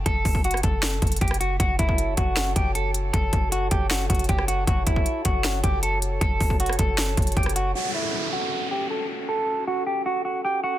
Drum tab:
HH |x-----------o-----------x---x---x---x-----------x-----------x--x--x--x--x---x---x---x-----------|x-----------x-----------x-----------x-----------x-----------x-----------x-----------x-----------|x-----------x-----------x-----------x-----------x-----------x--x--x--x--x-----------x-----------|x-----------x-----------x-----------x-----------x-----------x-----------x-----------x-----------|
SD |------------------------------r-----------------o-----------------------------r-----------------|------------------------------------------------o-----------------------------------------------|------------------------------------------------o-----------------------------r-----------------|------------------------------------------------o-----------------------------------------------|
BD |o-----------o-----o-----------------o-----------------------o-----------o-----------------------|o-----------o-----o-----------------o-----------------------o-----------------------------------|o-----------o-----------------------o-----------------------o-----------o-----------------------|o-----------o-----o-----------------o-----------------------o-----------------------------------|

HH |x-----------o-----------x---x---x---x-----------x-----------x--x--x--x--x---x---x---x-----------|------------------------------------------------------------------------------------------------|------------------------------------------------------------------------------------------------|
SD |------------------------------r-----------------o-----------------------------r-----------------|------------------------------------------------------------------------------------------------|------------------------------------------------------------------------------------------------|
BD |o-----------o-----o-----------------o-----------------------o-----------o-----------------------|------------------------------------------------------------------------------------------------|------------------------------------------------------------------------------------------------|